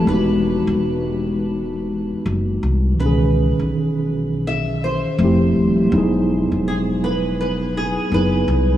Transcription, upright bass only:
X:1
M:4/4
L:1/16
Q:"Swing 16ths" 1/4=82
K:E
V:1 name="Upright bass" clef=bass
E,,,3 E,,,8 z F,,,2 ^B,,,2 | C,,3 B,,,8 z =F,,,2 D,,,2 | E,,,3 E,,,8 z F,,,2 ^B,,,2 |]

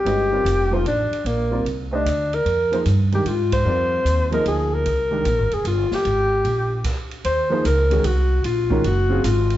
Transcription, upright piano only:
X:1
M:3/4
L:1/8
Q:"Swing" 1/4=150
K:Fdor
V:1 name="Upright piano"
[A,^C^F=Be] [G,=C=F_Bd]2 [F,B,E=Ac] z2 | z [G,CFBd] z [=A,DGce] z2 | z [F,B,EAc] z [E,A,DGB] z2 | [G,CFBd]3 [F,B,EAe]3 |
z [E,A,DGB] z4 | z6 | [K:Ebdor] z [F,B,EAc] z [E,A,DGA] z2 | z [E,A,DGB] z [D,G,CFA] z2 |]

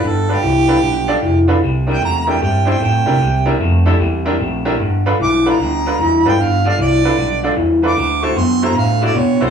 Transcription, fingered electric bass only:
X:1
M:4/4
L:1/8
Q:"Swing" 1/4=151
K:Gmix
V:1 name="Fingered electric bass" clef=bass
G,,,2 C,,2 B,,,2 F,,,2 | C,,2 E,,2 G,,2 A,, C, | C,,2 F,,2 E,,2 _B,,,2 | G,,,2 B,,,2 D,,2 E,, G,, |
G,,,2 C,,2 B,,,2 E,,2 | D,,2 ^F,,2 A,,2 B,, B,,, |]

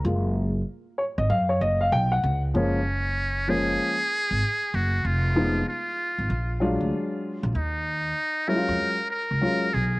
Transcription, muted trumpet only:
X:1
M:4/4
L:1/8
Q:"Swing 16ths" 1/4=96
K:F#
V:1 name="Muted trumpet"
z8 | C3 G4 F | =F2 F3 z3 | D3 A2 A2 G |]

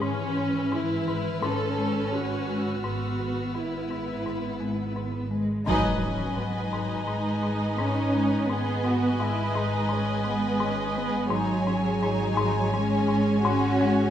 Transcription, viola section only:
X:1
M:4/4
L:1/8
Q:1/4=85
K:G#m
V:1 name="Viola section"
C2 E2 =A2 F2 | F2 E4 z2 | [Bd]8 | [Bd]8 |
[Gc]8 |]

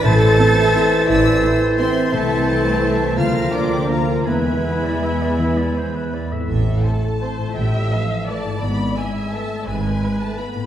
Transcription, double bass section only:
X:1
M:3/4
L:1/8
Q:1/4=167
K:Am
V:1 name="Double bass section" clef=bass
A,,,2 z4 | A,,,2 z4 | C,,6 | D,,6 |
E,,6- | E,,4- E,, z | A,,,2 z4 | A,,,2 z4 |
^G,,,2 z4 | ^G,,,2 z4 |]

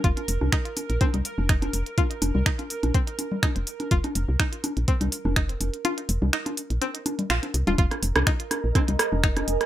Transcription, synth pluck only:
X:1
M:4/4
L:1/16
Q:"Swing 16ths" 1/4=124
K:Fm
V:1 name="Synth pluck"
F z3 E z3 C z3 E z3 | F z3 E z3 C z3 E z3 | F z3 E z3 C z3 E z3 | F z3 E z3 C z3 F z2 F |
F z3 E z3 C z3 E z3 |]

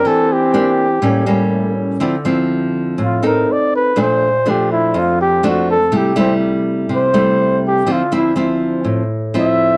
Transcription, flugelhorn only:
X:1
M:4/4
L:1/8
Q:1/4=123
K:Dm
V:1 name="Flugelhorn"
A G6 z | z4 F B d =B | c2 G E F G ^F A | G C z2 c3 G |
F E z4 e2 |]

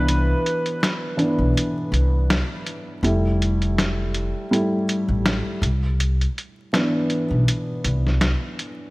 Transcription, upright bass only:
X:1
M:4/4
L:1/16
Q:"Swing 16ths" 1/4=81
K:C
V:1 name="Upright bass" clef=bass
C,,2 z4 z B,,, z2 C,,3 z3 | F,,,6- F,,, z4 A,,,2 z C,,2- | C,,2 z4 z B,,, z2 C,,3 z3 |]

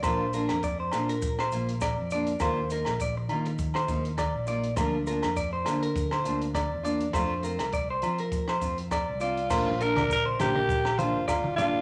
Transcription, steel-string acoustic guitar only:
X:1
M:4/4
L:1/8
Q:"Swing 16ths" 1/4=101
K:Bb
V:1 name="Steel-string acoustic guitar"
[F,B,DF] [B,DF] z [B,DF] z [B,F] z [B,DF] | [E,B,F] [B,EF] z [B,EF] z [B,EF] z [B,EF] | [F,B,DF] [B,DF] z [B,DF] z [B,DF] z [B,DF] | [A,CF] [CF] z [CF] z [CF] z [CF] |
[F,B,DF] [B,DF] z [B,DF] z [B,DF] z [B,DF] |]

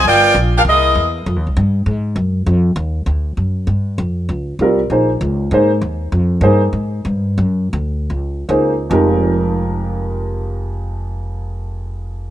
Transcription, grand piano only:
X:1
M:4/4
L:1/8
Q:"Swing" 1/4=197
K:Fm
V:1 name="Grand piano"
z8 | z8 | z8 | z6 [G,CFB] z |
[B,EAc] z3 [B,EAc] z3 | z2 [B,EAc] z4 z | z6 [B,EAc] z | [F,,F,A,EGB]8- |
[F,,F,A,EGB]8 |]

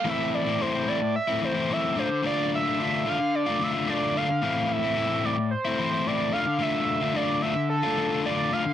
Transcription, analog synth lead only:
X:1
M:4/4
L:1/16
Q:1/4=110
K:Am
V:1 name="Analog synth lead"
e2 d2 c2 d2 e2 c2 e2 c2 | d2 e e3 f2 d2 e2 d2 f2- | f2 e4 d2 c4 d2 f2 | e4 d2 e2 A4 d2 f2 |]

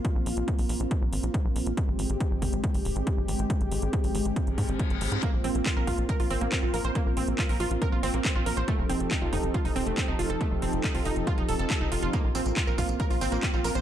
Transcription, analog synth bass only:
X:1
M:4/4
L:1/16
Q:1/4=139
K:Fm
V:1 name="Analog synth bass" clef=bass
z B,,, B,,, B,,, z B,,, B,,, B,,, z B,,, A,,, B,,, z B,,, B,,, B,,, | z A,,, A,,, A,,, z A,,, A,,, A,,, z A,,, E,,, A,,, z A,,, A,,, A,,, | z A,,, A,,, A,,, z A,,, A,,, A,,, z A,,, A,, A,,, z A,,, A,,, A,, | z B,,, B,,, B,,, z B,,, B,,, B,,, z B,,, A,,, B,,, z B,,, B,,, B,,, |
z B,,, B,,, B,,, z B,,, B,,, B,,, z B,,, A,,, B,,, z B,,, B,,, B,,, | z F,,, F,,, F,,, z F,,, F,,, F,,, z F,,, E,,, F,,, z F,,, F,,, F,,, | z F,,, F,,, F,,, z F,,, F,,, F,,, z F,,, E,,, F,,, z F,,, F,,, F,,, | z B,,, B,,, B,,, z B,,, B,,, B,,, z B,,, A,,, B,,, z B,,, B,,, B,,, |]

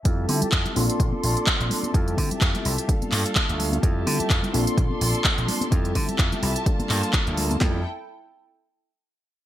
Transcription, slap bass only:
X:1
M:4/4
L:1/16
Q:"Swing 16ths" 1/4=127
K:F
V:1 name="Slap bass" clef=bass
F,,2 D, z F,, z B,,, z B,,, z B,,, z2 B,,, z2 | F,,2 D, z F,, z C,, z3 G,, z2 D,,3 | F,,2 D, z F,, z B,,, z B,,, z B,,, z2 B,,, z2 | F,,2 D, z F,, z C,, z3 G,, z2 D,,3 |
F,,2 z12 z2 |]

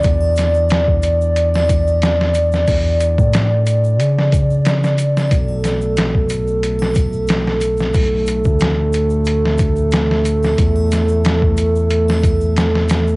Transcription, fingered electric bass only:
X:1
M:4/4
L:1/16
Q:"Swing 16ths" 1/4=91
K:Edor
V:1 name="Fingered electric bass" clef=bass
E,,16 | E,,3 A,,4- A,, C,8 | B,,,16 | B,,,3 D,,12- D,, |
E,,16 |]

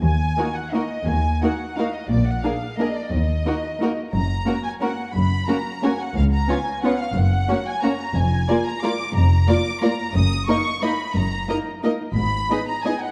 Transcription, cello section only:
X:1
M:3/4
L:1/8
Q:1/4=177
K:Ebm
V:1 name="Cello section" clef=bass
E,,2 z4 | E,,2 z4 | B,,2 z4 | E,,2 z4 |
G,,2 z4 | G,,2 z4 | D,,2 z4 | G,,2 z4 |
F,,2 z4 | F,,2 z4 | G,,2 z4 | G,,2 z4 |
A,,2 z4 |]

